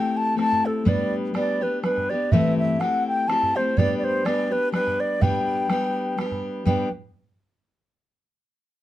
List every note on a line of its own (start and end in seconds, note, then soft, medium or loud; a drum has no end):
0.00 0.35 A3 medium
0.00 0.37 C4 medium
0.00 0.38 E4 medium
0.00 0.39 G4 medium
0.00 0.18 G5 medium
0.17 0.38 A5 medium
0.36 0.85 A3 soft
0.36 0.86 C4 medium
0.36 0.86 E4 medium
0.36 0.86 G4 medium
0.36 0.67 A5 loud
0.36 bodhran medium
0.53 bodhran soft
0.66 0.90 A4 medium
0.85 1.33 G3 medium
0.85 1.34 B3 medium
0.85 1.35 D4 medium
0.85 1.35 G4 medium
0.85 1.14 D5 medium
0.85 bodhran medium
1.34 1.61 G3 medium
1.34 1.62 B3 medium
1.34 1.62 D4 medium
1.34 1.60 G4 medium
1.34 1.64 D5 medium
1.34 bodhran medium
1.61 1.83 B3 soft
1.61 1.84 D4 soft
1.61 1.83 G4 soft
1.61 1.83 B4 medium
1.83 2.10 G3 soft
1.83 2.10 B3 medium
1.83 2.11 D4 medium
1.83 2.09 G4 medium
1.83 2.11 B4 medium
1.83 bodhran medium
1.98 bodhran soft
2.10 2.33 D4 soft
2.10 2.32 G4 medium
2.10 2.33 D5 medium
2.14 2.33 B3 soft
2.32 2.80 G2 medium
2.32 2.81 E3 medium
2.32 2.79 A3 medium
2.32 2.80 C4 medium
2.32 2.81 E4 medium
2.32 2.83 G4 medium
2.32 2.58 E5 medium
2.32 bodhran medium
2.58 2.81 E5 medium
2.80 3.27 A3 medium
2.80 3.28 C4 medium
2.80 3.30 E4 medium
2.80 3.31 G4 medium
2.80 3.07 F#5 medium
2.80 bodhran medium
3.08 3.30 G5 medium
3.28 3.55 A3 soft
3.28 3.56 C4 medium
3.28 3.55 E4 medium
3.28 3.54 G4 medium
3.28 3.58 A5 loud
3.28 bodhran medium
3.43 bodhran soft
3.55 3.76 A3 soft
3.55 3.78 C4 soft
3.55 3.78 E4 soft
3.55 3.77 G4 medium
3.55 3.79 C5 medium
3.77 4.25 G3 medium
3.77 4.26 B3 medium
3.77 4.27 D4 medium
3.77 4.28 G4 medium
3.77 3.98 D5 loud
3.77 bodhran medium
3.98 4.06 D5 medium
4.04 4.27 C5 medium
4.25 4.52 G3 medium
4.25 4.53 B3 medium
4.25 4.51 D4 medium
4.25 4.49 G4 medium
4.25 4.54 D5 medium
4.25 bodhran medium
4.51 4.72 B3 soft
4.51 4.73 D4 soft
4.51 4.73 G4 soft
4.51 4.73 B4 medium
4.72 5.21 G3 soft
4.72 5.22 B3 medium
4.72 5.23 D4 medium
4.72 5.23 G4 medium
4.72 5.02 B4 loud
4.72 bodhran medium
4.87 bodhran soft
5.00 5.23 D5 medium
5.21 5.69 G3 medium
5.21 5.70 B3 medium
5.21 5.71 D4 medium
5.21 5.72 G4 medium
5.21 6.18 G5 loud
5.21 bodhran medium
5.69 6.17 G3 medium
5.69 6.18 B3 medium
5.69 6.20 D4 medium
5.69 6.21 G4 medium
5.69 bodhran medium
6.18 6.65 G3 medium
6.18 6.66 B3 medium
6.18 6.67 D4 medium
6.18 6.68 G4 medium
6.18 bodhran medium
6.32 bodhran soft
6.65 6.87 G3 medium
6.65 6.88 B3 medium
6.65 6.88 D4 medium
6.65 6.88 G4 medium
6.65 6.91 G5 medium
6.65 bodhran medium